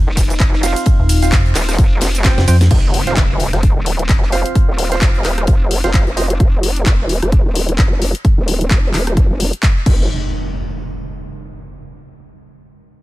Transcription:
Already playing: F3 A#3 D#4
0.07 D#1
0.17 kick, snare, closed hi-hat, open hi-hat, ride, cabasa
0.30 closed hi-hat, cabasa
0.40 F1, kick, clap, closed hi-hat, cabasa
0.53 snare
0.63 C4 F4 C5 F5, closed hi-hat, open hi-hat, ride, cabasa
0.76 closed hi-hat, cabasa
0.86 kick, closed hi-hat, cabasa
0.99 D#1
1.09 open hi-hat, ride, cabasa
1.22 C4 F4 C5 F5, snare, closed hi-hat, cabasa
1.32 F1, kick, snare, clap, closed hi-hat, cabasa
1.46 closed hi-hat
1.55 D#1, cross-stick, snare, clap, closed hi-hat, open hi-hat, ride, cabasa
1.62 snare, closed hi-hat
1.69 cross-stick, snare, closed hi-hat, cabasa
1.74 snare, closed hi-hat
1.79 F1, kick, closed hi-hat, cabasa
2.01 F1, snare, closed hi-hat, open hi-hat, ride, cabasa
2.15 snare, closed hi-hat, cabasa
2.24 C4 F4 C5 G5, kick, snare, clap, closed hi-hat, cabasa
2.38 F1, snare
2.48 F2 C4 F4 C5 G5, closed hi-hat, open hi-hat, ride, cabasa
2.61 snare, closed hi-hat, cabasa
2.71 F1, kick, closed hi-hat, crash, impact
2.94 closed hi-hat, open hi-hat
3.07 C4 F4 C5 F5, snare, closed hi-hat
3.17 D#1, kick, snare, clap, closed hi-hat
3.40 closed hi-hat, open hi-hat
3.53 F1, cross-stick, snare, closed hi-hat
3.63 kick, closed hi-hat
3.76 D#1
3.86 closed hi-hat, open hi-hat
3.99 closed hi-hat
4.09 F1, kick, snare, clap, closed hi-hat
4.23 snare
4.32 C4 F4 C5 F5, closed hi-hat, open hi-hat
4.46 closed hi-hat
4.55 kick, closed hi-hat
4.69 D#1
4.78 open hi-hat
4.92 C4 F4 C5 F5, snare, closed hi-hat
5.01 F1, kick, snare, clap, closed hi-hat
5.14 closed hi-hat
5.25 D#1, cross-stick, clap, closed hi-hat, open hi-hat
5.38 cross-stick, closed hi-hat
5.47 F1, kick, closed hi-hat
5.71 closed hi-hat, open hi-hat
5.84 F1 C4 F4 C5 F5, snare, closed hi-hat
5.94 C4 F4 C5 F5, kick, snare, clap, closed hi-hat
6.07 F1, closed hi-hat
6.17 C4 F4 C5 D#5, closed hi-hat, open hi-hat
6.30 closed hi-hat
6.40 F1, kick, closed hi-hat
6.63 open hi-hat
6.76 closed hi-hat
6.86 D#1, kick, clap, closed hi-hat
7.09 open hi-hat
7.22 F1, cross-stick, closed hi-hat
7.32 kick, closed hi-hat
7.46 D#1
7.55 open hi-hat
7.69 closed hi-hat
7.78 F1, kick, clap, closed hi-hat
8.02 open hi-hat
8.15 closed hi-hat
8.25 kick, closed hi-hat
8.38 D#1
8.48 open hi-hat
8.61 closed hi-hat
8.71 F1, kick, clap, closed hi-hat
8.94 D#1, cross-stick, clap, open hi-hat
9.07 cross-stick, closed hi-hat
9.17 F1, kick, closed hi-hat
9.30 F1
9.40 open hi-hat
9.53 closed hi-hat
9.63 kick, clap, closed hi-hat
9.86 F1, kick, crash, impact

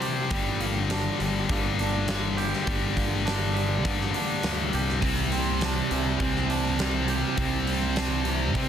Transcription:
Already playing: C3 E3 G3 C4 D4
0.02 G4, open hi-hat
0.30 G1 G2 D3 G3, kick, open hi-hat
0.60 A#3, open hi-hat
0.90 D4, snare, open hi-hat
1.20 G1 G3, open hi-hat
1.49 G1 G2 D3 G3 A#3, kick, open hi-hat
1.79 D4, open hi-hat
2.08 A#3, snare, open hi-hat
2.37 G4, open hi-hat
2.53 snare
2.66 G1 G2 D3 G3, kick, open hi-hat
2.96 A#3, kick, open hi-hat
3.25 D4, snare, open hi-hat
3.54 G3, open hi-hat
3.84 G2 D3 G3 A#3, kick, open hi-hat
4.01 snare
4.14 D4, open hi-hat
4.43 D2 A#3, snare, open hi-hat
4.73 C2 G4, open hi-hat
4.89 snare
5.01 C2 C3 G3 C4, kick, open hi-hat
5.32 C4, open hi-hat
5.61 D4, snare, open hi-hat
5.90 C2 C3 E3 G3 C4, open hi-hat
6.18 C2 C3 G3 C4, kick, open hi-hat
6.22 C4
6.36 snare
6.50 D4, open hi-hat
6.78 C3 G3 C4, snare, open hi-hat
7.08 G4, open hi-hat
7.36 C2 C3 G3 C4, kick, open hi-hat
7.40 C4
7.67 C4, open hi-hat
7.96 D4, snare, open hi-hat
8.25 C3 E3 G3 C4, open hi-hat
8.54 C3 G3 C4, kick, open hi-hat

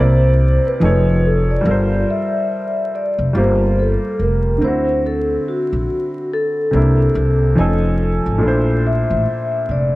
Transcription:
Already playing: C2 C3 A#3
0.00 E4 C5 D5
0.67 B4
0.80 F1 F3 D#4 G#4 A4
0.85 C#5
1.26 A4
1.51 D5
1.61 G3 F4
1.65 G1 A4 A#4
1.71 C5
2.10 E5
2.95 D5
3.19 F1
3.33 G1 G3 F4 G4 C5
3.38 A#3
3.79 A4
4.19 F1 A#4
4.58 D2 D3 C4
4.64 E4 F#4 C5
5.06 A4
5.48 F#4
5.73 A#1
6.33 A4
6.71 C2 C3 A#3 D4
6.76 E4
7.15 C2
7.55 F1 F3 C#4 D#4 G#5
7.60 A4
8.26 G#1
8.38 A#1 A#2 A3
8.43 D4 E4
8.48 C5
8.87 E5
9.10 A1
9.69 F1 D5

